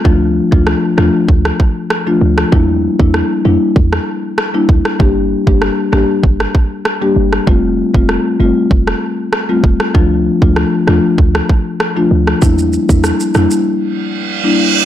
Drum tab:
SH |----------------|----------------|----------------|----------------|
SD |----r-r--r--r--r|----r----r--r--r|----r-r--r--r--r|----r----r--r--r|
BD |o--o----o-o-----|o--o----o-----o-|o--o----o-o-----|o--o----o-----o-|

SH |----------------|xxxxxxxx--------|
SD |----r-r--r--r--r|----r-r---------|
BD |o--o----o-o-----|o--o------------|